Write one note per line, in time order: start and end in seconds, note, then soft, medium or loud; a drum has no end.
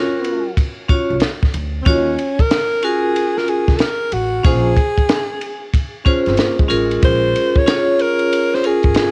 0.00 0.41 C#4 medium
0.00 0.54 C#4 medium
0.00 0.41 F4 medium
0.00 0.42 F#4 medium
0.00 0.42 A#4 medium
0.24 ride medium
0.57 kick medium
0.57 ride medium
0.89 1.15 C#4 medium
0.89 1.15 F4 medium
0.89 1.15 F#4 medium
0.89 1.15 C#5 medium
0.89 kick medium
0.89 ride medium
1.10 1.20 C2 medium
1.20 snare loud
1.20 hi-hat pedal soft
1.20 ride medium
1.43 kick medium
1.43 snare soft
1.54 1.82 D2 medium
1.54 ride medium
1.82 1.90 C4 medium
1.82 2.11 C#4 medium
1.82 kick loud
1.82 ride medium
1.86 2.14 D#2 loud
1.86 2.43 C#4 loud
1.86 2.12 F4 medium
1.86 2.12 F#4 medium
1.86 2.12 C#5 medium
2.19 ride medium
2.39 2.86 A#4 loud
2.39 kick medium
2.39 ride soft
2.51 snare loud
2.51 hi-hat pedal medium
2.51 ride medium
2.82 3.75 C#4 medium
2.82 3.76 F4 medium
2.82 3.76 F#4 medium
2.82 3.39 G#4 loud
2.82 3.76 A#4 medium
2.82 ride medium
3.16 ride medium
3.37 3.51 A#4 medium
3.37 snare soft
3.48 3.78 G#4 medium
3.48 ride soft
3.68 3.78 C2 medium
3.68 kick medium
3.68 snare soft
3.76 3.82 A4 medium
3.76 hi-hat pedal soft
3.76 ride medium
3.80 4.15 A#4 loud
3.80 snare medium
4.12 4.40 A1 medium
4.12 4.45 F#4 medium
4.12 ride medium
4.44 4.73 A#1 loud
4.44 4.69 C#4 medium
4.44 4.70 F4 medium
4.44 4.70 G#4 medium
4.44 5.70 G#4 loud
4.44 4.70 C5 medium
4.44 kick loud
4.44 ride medium
4.77 kick medium
4.77 ride medium
4.98 kick medium
4.98 ride soft
5.09 snare loud
5.09 hi-hat pedal medium
5.09 ride medium
5.41 ride medium
5.74 kick medium
5.74 ride medium
6.05 6.54 C#4 medium
6.05 6.25 C#4 medium
6.05 6.55 F4 medium
6.05 6.55 G#4 medium
6.05 6.55 C5 medium
6.05 kick medium
6.05 ride soft
6.26 6.37 G1 medium
6.26 6.39 C4 medium
6.26 snare soft
6.26 ride soft
6.37 6.58 A#3 medium
6.37 snare medium
6.37 hi-hat pedal soft
6.37 ride medium
6.59 7.52 G#3 medium
6.59 kick medium
6.68 6.99 A1 medium
6.68 7.62 C#4 medium
6.68 7.62 F4 medium
6.68 7.62 G#4 medium
6.68 7.62 A#4 medium
6.68 ride medium
6.91 ride soft
7.03 7.31 A#1 medium
7.03 7.59 C5 loud
7.03 kick loud
7.03 ride medium
7.36 ride medium
7.56 8.03 C#5 loud
7.56 kick medium
7.66 8.59 C#4 medium
7.66 8.59 F4 medium
7.66 8.59 G#4 medium
7.66 8.60 C#5 medium
7.66 snare loud
7.66 hi-hat pedal medium
7.66 ride medium
7.99 8.56 A#4 loud
7.99 ride medium
8.19 ride soft
8.33 ride medium
8.54 8.68 C5 loud
8.54 snare soft
8.64 9.11 C#4 medium
8.64 9.11 F4 medium
8.64 9.11 G#4 medium
8.64 9.11 G#4 loud
8.64 9.11 A#4 medium
8.64 ride medium
8.83 8.94 G1 medium
8.83 kick medium
8.83 ride soft
8.94 snare loud
8.94 hi-hat pedal soft
8.94 ride medium